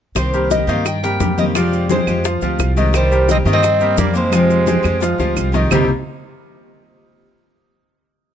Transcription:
0.15 upright bass C2, steel-string acoustic guitar C3 D#3 A#3 C4 G4, cuban tres C5, high bongo, high conga, claves, maracas
0.34 grand piano G3 G4 A#4, high conga, maracas
0.50 steel-string acoustic guitar D#3 A#3 C4 G4, cuban tres D#5, high bongo, high conga, maracas
0.67 upright bass G2, grand piano D#3 D#4 D#5, steel-string acoustic guitar D#3 A#3 C4 G4, cuban tres F5, high conga, maracas
0.85 cuban tres G5, muted steel-string acoustic guitar stroke, high bongo, high conga, claves, maracas
1.03 grand piano G3 G4 A#4, steel-string acoustic guitar A#3 C4 G4, cuban tres G5, high conga, maracas
1.20 upright bass F2, grand piano G3 G4 A#4, high bongo, low bongo, high conga, maracas
1.38 steel-string acoustic guitar D#3 A#3 C4 G4, cuban tres D#5, high conga, maracas
1.55 steel-string acoustic guitar C3 F3 G#3 C4 G4, grand piano F3 F4 F5, cuban tres D5, high bongo, high conga, claves, maracas
1.73 high bongo, high conga, maracas
1.89 steel-string acoustic guitar F3 G#3 C4 G4, grand piano G#3 G#4 C5, cuban tres C5, high bongo, high conga, maracas
2.07 upright bass F2, steel-string acoustic guitar F3 G#3 C4 G4, high bongo, high conga, claves, maracas
2.24 grand piano F3 F4 F5, muted steel-string acoustic guitar stroke, high bongo, high conga, maracas
2.42 upright bass D2, grand piano F3 F4 F5, steel-string acoustic guitar G#3 C4 G4, high bongo, high conga, maracas
2.59 upright bass C2, high bongo, low bongo, high conga, claves, maracas
2.77 grand piano D#3 D#4 D#5, steel-string acoustic guitar F3 G#3 C4 G4, high conga, maracas
2.93 steel-string acoustic guitar C3 D#3 A#3 C4 G4, trumpet G3, cuban tres C5, high bongo, high conga, claves, maracas
3.12 grand piano G3 G4 A#4, high conga, maracas
3.28 steel-string acoustic guitar D#3 A#3 C4 G4, trumpet C4, cuban tres D#5, high bongo, high conga, maracas
3.45 upright bass G2, grand piano D#3 D#4 D#5, steel-string acoustic guitar D#3 A#3 C4 G4, high conga, maracas
3.53 trumpet C4, cuban tres D#5
3.63 muted steel-string acoustic guitar stroke, high bongo, high conga, claves, maracas
3.80 grand piano G3 G4 A#4, steel-string acoustic guitar A#3 C4 G4, high conga, maracas
3.97 upright bass F2, grand piano G3 G4 A#4, trumpet A#3, cuban tres D5, high bongo, low bongo, high conga, maracas
4.14 steel-string acoustic guitar D#3 A#3 C4 G4, trumpet G#3, cuban tres C5, maracas
4.32 steel-string acoustic guitar C3 F3 G#3 C4 G4, grand piano F3 F4 F5, high bongo, high conga, claves, maracas
4.50 high bongo, high conga, maracas
4.66 steel-string acoustic guitar F3 G#3 C4 G4, grand piano G#3 G#4 C5, high bongo, high conga, maracas
4.83 upright bass F2, steel-string acoustic guitar F3 G#3 C4 G4, high bongo, high conga, claves, maracas
5.00 grand piano F3 F4 F5, muted steel-string acoustic guitar stroke, high bongo, high conga, maracas
5.18 upright bass D2, grand piano F3 F4 F5, steel-string acoustic guitar G#3 C4 G4, low bongo, high conga, maracas
5.36 upright bass C2, low bongo, high conga, claves, maracas
5.52 grand piano D#3 D#4 D#5, steel-string acoustic guitar F3 G#3 C4 G4, low bongo, high conga, maracas
5.70 upright bass C2, steel-string acoustic guitar C3 D#3 A#3 C4 G4, grand piano C3 G3 A#3 C4 D#4 G4, low bongo, low conga, claves, maracas

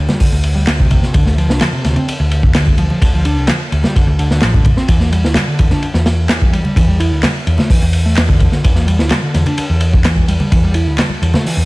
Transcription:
0.08 picked electric bass G3, snare, low conga
0.20 picked electric bass D3, kick, open hi-hat
0.32 picked electric bass D2
0.43 ride
0.55 picked electric bass G3
0.67 picked electric bass D2, snare, clap, ride
0.79 picked electric bass C3, kick, high conga
0.91 kick, ride, low conga
1.03 snare
1.14 picked electric bass D2 D3, kick, ride
1.25 picked electric bass A3, snare
1.37 picked electric bass F3, ride
1.49 picked electric bass C2 D4, snare
1.61 picked electric bass F3, snare, clap, ride, low conga
1.72 picked electric bass C3
1.84 picked electric bass D2, snare, ride
1.96 picked electric bass C4, ride, low conga
2.08 muted picked electric bass stroke, ride
2.20 picked electric bass D2
2.31 ride
2.43 kick
2.55 picked electric bass D2 D3, snare, clap, ride
2.66 kick, high conga
2.78 picked electric bass F3, ride
2.90 picked electric bass F3, low conga
3.02 picked electric bass D2 D3, kick, ride
3.13 picked electric bass F3
3.25 picked electric bass D4, ride
3.37 picked electric bass C2
3.47 picked electric bass F3, snare, clap, ride, low conga
3.72 picked electric bass D2, ride
3.84 picked electric bass G3, snare, low conga
3.95 picked electric bass D3, kick, ride
4.07 picked electric bass D2
4.19 picked electric bass D3, ride
4.31 picked electric bass D3, snare
4.41 picked electric bass A1 F3, snare, clap, ride
4.54 picked electric bass D3, kick, high conga
4.64 kick, ride, low conga
4.77 picked electric bass C4, snare
4.88 picked electric bass E2 E3, kick, ride
5.00 picked electric bass A#3, snare
5.12 picked electric bass G3, ride
5.24 picked electric bass D2 E4, snare
5.34 picked electric bass G3, snare, clap, ride, low conga
5.47 picked electric bass D3
5.59 picked electric bass E2, kick, ride
5.71 picked electric bass D4, snare, low conga
5.82 muted picked electric bass stroke, ride
5.94 picked electric bass E2, snare
6.06 snare, ride
6.29 picked electric bass E2 E3, snare, clap, ride
6.41 kick, high conga
6.53 picked electric bass G3, ride
6.64 picked electric bass G3, low conga
6.76 picked electric bass E2 E3, kick, ride
6.88 picked electric bass G3
7.00 picked electric bass E4, ride
7.12 picked electric bass D2
7.23 picked electric bass G3, snare, clap, ride, low conga
7.47 picked electric bass E2, ride
7.58 picked electric bass A3, snare, low conga
7.70 picked electric bass E3, kick, open hi-hat
7.82 picked electric bass E2
7.93 ride
8.06 picked electric bass A3
8.17 picked electric bass E2, snare, clap, ride
8.29 picked electric bass D3, kick, high conga
8.40 kick, ride, low conga
8.52 snare
8.64 picked electric bass E2 E3, kick, ride
8.75 picked electric bass A#3, snare
8.87 picked electric bass G3, ride
8.99 picked electric bass D2 E4, snare
9.10 picked electric bass G3, snare, clap, ride, low conga
9.23 picked electric bass D3
9.34 picked electric bass E2, snare, ride
9.46 picked electric bass D4, ride, low conga
9.58 muted picked electric bass stroke, ride
9.69 picked electric bass E2
9.81 ride
9.93 kick
10.04 picked electric bass E2 E3, snare, clap, ride
10.16 kick, high conga
10.28 picked electric bass G3, ride
10.40 picked electric bass G3, low conga
10.52 picked electric bass E2 E3, kick, ride
10.63 picked electric bass G3
10.74 picked electric bass E4, ride
10.87 picked electric bass D2
10.98 picked electric bass G3, snare, clap, ride, low conga
11.09 high conga
11.22 picked electric bass E2, ride
11.34 picked electric bass A3, snare, low conga
11.45 picked electric bass E3, open hi-hat
11.57 picked electric bass E2

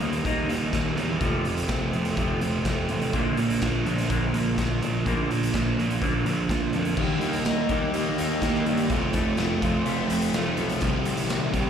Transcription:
0.00 picked electric bass D#2, overdriven electric guitar D#3 G3 A#3 D#4, closed hi-hat
0.13 closed hi-hat
0.24 picked electric bass D#2, overdriven electric guitar D#3 G3 A#3 D#4, kick, closed hi-hat
0.48 picked electric bass D#2, overdriven electric guitar D#3 G3 A#3 D#4, closed hi-hat
0.71 picked electric bass D#2, overdriven electric guitar D#3 G3 A#3 D#4, kick, snare, closed hi-hat
0.96 picked electric bass E2, overdriven electric guitar D#3 G3 A#3 D#4, closed hi-hat
1.21 picked electric bass F1, overdriven electric guitar F2 C3 F3 A3 C4, kick, closed hi-hat
1.45 overdriven electric guitar F2 C3 F3 A3 C4, closed hi-hat
1.57 closed hi-hat
1.68 picked electric bass F1, overdriven electric guitar F2 C3 F3 A3 C4, kick, snare, closed hi-hat
1.93 picked electric bass F1, overdriven electric guitar F2 C3 F3 A3 C4, closed hi-hat
2.05 snare, closed hi-hat
2.16 picked electric bass F1, overdriven electric guitar F2 C3 F3 A3 C4, kick, closed hi-hat
2.40 picked electric bass F1, overdriven electric guitar F2 C3 F3 A3 C4, closed hi-hat
2.65 picked electric bass F1, overdriven electric guitar F2 C3 F3 A3 C4, kick, snare, closed hi-hat
2.89 picked electric bass A1, overdriven electric guitar F2 C3 F3 A3 C4, closed hi-hat
3.02 closed hi-hat
3.13 picked electric bass A#1, overdriven electric guitar A#2 F3 A#3 D4, clean electric guitar D3, kick, closed hi-hat
3.37 picked electric bass A#1, overdriven electric guitar A#2 F3 A#3 D4, clean electric guitar D3, closed hi-hat
3.50 closed hi-hat
3.61 picked electric bass A#1, overdriven electric guitar A#2 F3 A#3 D4, clean electric guitar D3, kick, snare, closed hi-hat
3.86 picked electric bass A#1, overdriven electric guitar A#2 F3 A#3 D4, clean electric guitar D3, closed hi-hat
3.98 snare, closed hi-hat
4.10 picked electric bass A#1, overdriven electric guitar A#2 F3 A#3 D4, clean electric guitar D3, kick, closed hi-hat
4.33 picked electric bass A#1, overdriven electric guitar A#2 F3 A#3 D4, clean electric guitar D3, closed hi-hat
4.57 picked electric bass A#1, overdriven electric guitar A#2 F3 A#3 D4, clean electric guitar D3, kick, snare, closed hi-hat
4.82 picked electric bass A#1, overdriven electric guitar A#2 F3 A#3 D4, clean electric guitar D3, closed hi-hat
5.06 picked electric bass A#1, overdriven electric guitar A#2 F3 A#3 D4, clean electric guitar D3, kick, closed hi-hat
5.30 overdriven electric guitar A#2 F3 A#3 D4, clean electric guitar D3, closed hi-hat
5.43 closed hi-hat
5.54 picked electric bass A#1, overdriven electric guitar A#2 F3 A#3 D4, clean electric guitar D3, kick, snare, closed hi-hat
5.77 picked electric bass A#1, overdriven electric guitar A#2 F3 A#3 D4, clean electric guitar D3, closed hi-hat
5.90 closed hi-hat
6.01 picked electric bass A#1, overdriven electric guitar A#2 F3 A#3 D4, clean electric guitar D3, kick, closed hi-hat
6.25 picked electric bass A#1, overdriven electric guitar A#2 F3 A#3 D4, clean electric guitar D3, closed hi-hat
6.49 picked electric bass A#1, overdriven electric guitar A#2 F3 A#3 D4, clean electric guitar D3, kick, snare, closed hi-hat
6.73 picked electric bass F2, overdriven electric guitar A#2 F3 A#3 D4, clean electric guitar D3, closed hi-hat
6.85 closed hi-hat
6.97 picked electric bass D#2, overdriven electric guitar D#3 A#3 D#4, distorted electric guitar G3, kick, crash
7.01 overdriven electric guitar G4
7.21 picked electric bass D#2, clean electric guitar A#3, closed hi-hat
7.33 closed hi-hat
7.45 picked electric bass D#2, clean electric guitar D#4, snare, closed hi-hat
7.69 picked electric bass D#2, overdriven electric guitar A#3 D#4 G4, kick, closed hi-hat
7.74 overdriven electric guitar D#3
7.93 picked electric bass D#2, distorted electric guitar D#3 G3 A#3, clean electric guitar A#3, closed hi-hat
7.97 distorted electric guitar D#4
8.18 picked electric bass D#2, clean electric guitar D#4, closed hi-hat
8.42 picked electric bass D#2, overdriven electric guitar D#3 A#3 D#4 G4, kick, snare, closed hi-hat
8.55 snare
8.66 picked electric bass G2, clean electric guitar D#3, closed hi-hat
8.77 closed hi-hat
8.89 picked electric bass F1, clean electric guitar F2, overdriven electric guitar F3 A3 C4, kick, closed hi-hat
8.94 overdriven electric guitar F4
9.13 picked electric bass F1, clean electric guitar A3, kick, closed hi-hat
9.37 picked electric bass F1, clean electric guitar C4, snare, closed hi-hat
9.62 picked electric bass F1, overdriven electric guitar F3 A3 C4 F4, kick, closed hi-hat
9.86 picked electric bass F1, distorted electric guitar F3 A3 C4 F4, clean electric guitar A3, closed hi-hat
10.09 picked electric bass F1, clean electric guitar C4, closed hi-hat
10.21 closed hi-hat
10.33 picked electric bass F1, overdriven electric guitar F3 A3 C4, snare, closed hi-hat
10.37 overdriven electric guitar F4
10.57 picked electric bass B1, clean electric guitar F3, closed hi-hat
10.69 closed hi-hat
10.81 picked electric bass C2, overdriven electric guitar C3 D#3 G3 C4 G4, kick, closed hi-hat
11.05 picked electric bass C2, closed hi-hat
11.17 closed hi-hat
11.29 picked electric bass C2, snare, closed hi-hat
11.53 picked electric bass C2, overdriven electric guitar C3 D#3 G3 C4 G4, kick, closed hi-hat

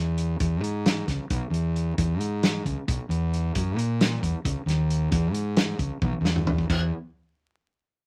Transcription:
Already playing: fingered electric bass E2
0.18 closed hi-hat
0.40 fingered electric bass E2, kick, closed hi-hat
0.61 fingered electric bass G#2, closed hi-hat
0.86 snare, closed hi-hat
1.08 fingered electric bass C#2, kick, snare, closed hi-hat
1.30 fingered electric bass B1, kick, closed hi-hat
1.50 fingered electric bass E2, closed hi-hat
1.76 closed hi-hat
1.98 fingered electric bass E2, kick, closed hi-hat
2.19 fingered electric bass G#2, closed hi-hat
2.43 snare, closed hi-hat
2.65 fingered electric bass C#2, kick, closed hi-hat
2.87 fingered electric bass B1, kick, closed hi-hat
3.09 fingered electric bass E2, closed hi-hat
3.34 closed hi-hat
3.55 fingered electric bass F#2, kick, closed hi-hat
3.76 fingered electric bass A#2, closed hi-hat
4.01 snare, closed hi-hat
4.23 fingered electric bass E2, kick, closed hi-hat
4.44 fingered electric bass C#2, kick, closed hi-hat
4.66 fingered electric bass D#2, snare, closed hi-hat
4.90 closed hi-hat
5.11 fingered electric bass E2, kick, closed hi-hat
5.32 fingered electric bass G#2, closed hi-hat
5.57 snare, closed hi-hat
5.79 fingered electric bass C#2, kick, closed hi-hat
6.02 fingered electric bass B1, kick, high tom
6.21 fingered electric bass E2
6.25 snare
6.36 mid tom
6.47 floor tom
6.58 kick
6.69 fingered electric bass E2, kick, crash

